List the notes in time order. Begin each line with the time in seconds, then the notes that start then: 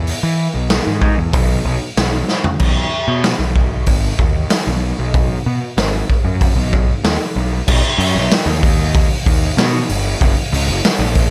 Already playing: E2
0.07 open hi-hat
0.23 E3
0.54 B1
0.70 snare, open hi-hat
0.87 G#2
1.01 G#2, kick
1.18 E2
1.33 B1, kick, open hi-hat
1.65 B1
1.97 B1, snare, open hi-hat
2.29 snare
2.44 floor tom
2.59 B1, kick, crash
3.08 B2
3.24 snare, open hi-hat
3.39 B1
3.56 kick
3.86 G#1, kick, open hi-hat
4.18 D#2, kick
4.50 snare, open hi-hat
4.67 B1
4.99 B1
5.14 kick, open hi-hat
5.46 B2
5.77 G#1, snare, open hi-hat
6.10 kick
6.25 F#2
6.41 kick, open hi-hat
6.56 B1
6.73 kick
7.04 D#2, snare, open hi-hat
7.36 B1
7.68 B1, kick, crash
7.98 F#2, open hi-hat
8.14 B1
8.31 snare, open hi-hat
8.46 D#2
8.63 kick, open hi-hat
8.95 kick, open hi-hat
9.26 D#2, kick, open hi-hat
9.57 B2, snare, open hi-hat
9.89 G1, open hi-hat
10.21 F#1, kick, open hi-hat
10.52 C#2, open hi-hat
10.67 F#1
10.85 snare, open hi-hat
10.99 A#1
11.15 kick, open hi-hat